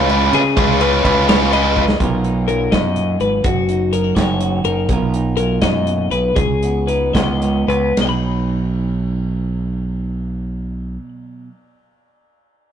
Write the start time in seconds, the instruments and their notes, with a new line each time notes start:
Already playing: fingered electric bass C#2, clean electric guitar C#5
0.09 overdriven electric guitar G#3 C#4 F4 B4, ride
0.33 fingered electric bass C#3, clean electric guitar G#4, ride
0.56 fingered electric bass C#2, overdriven electric guitar G#3 C#4 F4 B4, kick, ride
0.81 overdriven electric guitar G#3 C#4 F4 B4, clean electric guitar B4, ride
1.04 fingered electric bass C#2, overdriven electric guitar G#3 C#4 F4 B4, kick, ride
1.28 overdriven electric guitar G#3 C#4 F4 B4, clean electric guitar C#5, snare, ride
1.51 overdriven electric guitar G#3 C#4 F4 B4, clean electric guitar D#5, ride
1.77 kick
1.89 snare
2.00 fingered electric bass B1, clean electric guitar B2 F#3 D#4 F4, kick, closed hi-hat
2.04 clean electric guitar A#4
2.24 clean electric guitar D#4, closed hi-hat
2.48 clean electric guitar F#3 F4 A#4, closed hi-hat
2.72 fingered electric bass F#2, clean electric guitar B2 D#5, kick, snare, closed hi-hat
2.95 clean electric guitar A#2, closed hi-hat
3.19 fingered electric bass G#1, clean electric guitar G#2 B4, closed hi-hat
3.43 fingered electric bass F#1, clean electric guitar F#2 F#4, kick, closed hi-hat
3.69 clean electric guitar D#4, closed hi-hat
3.93 clean electric guitar F#3 D#4 A#4, closed hi-hat
4.04 clean electric guitar F#4
4.15 fingered electric bass F#1, clean electric guitar D#4 C#5, kick, snare, closed hi-hat
4.41 clean electric guitar C#3 F#4, closed hi-hat
4.64 fingered electric bass F#1, clean electric guitar D#4 A#4, closed hi-hat
4.89 fingered electric bass B1, clean electric guitar B2 F#3 D#4 F4, kick, closed hi-hat
4.93 clean electric guitar A#4
5.14 clean electric guitar D#4, closed hi-hat
5.37 clean electric guitar F#3 F4 A#4, closed hi-hat
5.61 fingered electric bass F#2, clean electric guitar G#2 D#5, kick, snare, closed hi-hat
5.87 clean electric guitar A#2, closed hi-hat
6.10 fingered electric bass B1, clean electric guitar B2 B4, closed hi-hat
6.36 fingered electric bass C#2, clean electric guitar C#3 G#4, kick, closed hi-hat
6.63 clean electric guitar B3, closed hi-hat
6.87 clean electric guitar G#3 D#4 B4, closed hi-hat
7.13 fingered electric bass C#2, clean electric guitar B3 D#5, kick, snare, closed hi-hat
7.42 clean electric guitar G#2 D#4, closed hi-hat
7.68 fingered electric bass C#2, clean electric guitar B3 B4, closed hi-hat
7.97 fingered electric bass B1, clean electric guitar B2, snare, ride bell
8.01 clean electric guitar F#3 D#5 F#5
8.07 clean electric guitar D#4 B5